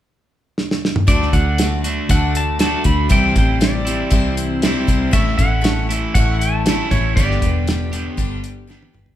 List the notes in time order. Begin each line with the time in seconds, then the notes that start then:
0.58 snare
0.71 snare
0.85 snare
0.96 mid tom
1.07 D2 D3 A3 D4 F#4 D5, kick, closed hi-hat
1.22 snare
1.33 D2 D4 F#4 D5 F#5, kick, closed hi-hat
1.58 A3 D4 F#4 D5, snare, closed hi-hat
1.84 D3 A3 D4 F#4, closed hi-hat
2.09 D2 D3 A3 D4 F#4 D5 F#5, kick, closed hi-hat
2.35 A5, closed hi-hat
2.59 D3 A3 D4 F#4 D5 A5, snare, closed hi-hat
2.84 D2 F#4 D5 B5, kick, closed hi-hat
2.89 D4
3.08 C2 C3 E3 G3 C4 E4 C5 G5, kick, closed hi-hat
3.36 A1 G3 C4 E4 C5 G5, kick, closed hi-hat
3.60 G3 C4 E4 C5 D5, snare, closed hi-hat
3.85 C3 E3 G3 C4 E4, closed hi-hat
4.11 C2 C3 E3 G3 C4 E4 C5, kick, closed hi-hat
4.37 closed hi-hat
4.62 C3 E3 G3 C4 E4 C5, snare, closed hi-hat
4.87 C2 G3 C4 E4 C5, kick, closed hi-hat
5.11 A1 A2 E3 A3 C#4 E4 C#5 E5, kick, closed hi-hat
5.15 E4
5.38 A1 A3 C#4 E4 C#5 F#5, kick, closed hi-hat
5.61 A3 C#4 E4 C#5, snare, closed hi-hat
5.89 A2 E3 A3 C#4 E4, closed hi-hat
6.14 A1 A2 E3 A3 C#4 E4 C#5 F#5, kick, closed hi-hat
6.39 A5, closed hi-hat
6.65 A2 E3 A3 C#4 E4 C#5, snare, closed hi-hat
6.69 E4
6.91 A1 C#4 E4 C#5, kick, closed hi-hat
6.95 A3
7.16 G1 G2 D3 G3 B3 D4 G4 B4 D5, kick, closed hi-hat
7.31 snare
7.42 E1 G4 B4, kick, closed hi-hat
7.46 D4
7.67 G3 D4 G4 B4, snare, closed hi-hat
7.92 D3 G3 B3 D4 G4, closed hi-hat
7.96 G2
8.15 G1 G3 C5, kick, closed hi-hat
8.19 D4 G4 B4
8.44 closed hi-hat
8.67 G2 D3 G3 B3 D4 G4 B4, snare
8.83 high tom
8.93 G1 D4 G4 B4, mid tom
9.06 floor tom